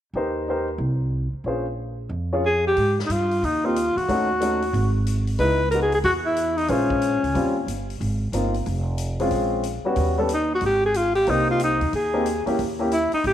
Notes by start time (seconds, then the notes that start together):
0.13 D#2 D#4 G4 A#4 C5
0.48 D#4 G4 A#4 C5
0.78 C2
1.33 muted upright bass stroke
1.44 A#1 C#4 F4 G#4 C5
2.09 F2
2.33 C#4 F4 G#4 C#5
2.46 G#4
2.67 G4
2.77 G#2, kick, open hi-hat
2.99 snare
3.06 G2 D#4, closed hi-hat
3.12 F4
3.31 open hi-hat
3.43 D#2 D#4, kick, open hi-hat
3.64 A#3 C4 D#4 F4 G4
3.76 closed hi-hat
3.96 E2 F#4, open hi-hat
4.09 D#2 A3 C#4 D#4 F#4, kick, open hi-hat
4.40 A3 C#4 D#4 F#4, closed hi-hat
4.62 open hi-hat
4.73 G#1, kick, open hi-hat
5.07 closed hi-hat
5.27 open hi-hat
5.39 C#2 G#3 B3 D#4 E4 B4, kick, open hi-hat
5.71 G#3 B3 D#4 F#4 A#4, closed hi-hat
5.82 G#4
5.92 G#4, open hi-hat
6.04 E2 F#4, kick, open hi-hat
6.25 E4
6.36 closed hi-hat
6.57 D#4, open hi-hat
6.68 A#1 G#3 C#4 F4 C5, kick, open hi-hat
6.90 kick
7.01 closed hi-hat
7.23 C#2, open hi-hat
7.34 D#2 G3 C4 C#4 F4, kick, open hi-hat
7.66 G1, closed hi-hat
7.90 open hi-hat
8.00 G#1, kick, open hi-hat
8.32 G1 A#3 C4 D#4 F4, closed hi-hat
8.54 open hi-hat
8.66 F1, kick, open hi-hat
8.98 closed hi-hat
9.20 G#3 C4 C#4 F4, open hi-hat
9.31 A#1, kick, open hi-hat
9.63 closed hi-hat
9.84 G3 B3 C#4 F#4, muted upright bass stroke
9.96 D#2, kick, open hi-hat
10.18 G3 B3 C#4 A4
10.29 closed hi-hat
10.34 D#4
10.55 F#4
10.61 G#1, kick, open hi-hat
10.66 G4
10.86 G#4
10.94 F4, closed hi-hat
11.15 G4, open hi-hat
11.27 C2 A#3 C4 D#4 G4, kick, open hi-hat
11.51 F4
11.60 closed hi-hat
11.64 D#4
11.81 D#2, open hi-hat
11.93 D#2 G#4, kick, open hi-hat
12.13 A#3 C4 D#4 G4
12.26 closed hi-hat
12.46 E2 A#3 C#4 E4 G4, open hi-hat
12.58 D#2, kick, open hi-hat
12.79 A#3 C#4 E4 G4
12.91 E4, closed hi-hat
13.12 D#4, muted upright bass stroke, open hi-hat
13.24 G#1 G4, kick, open hi-hat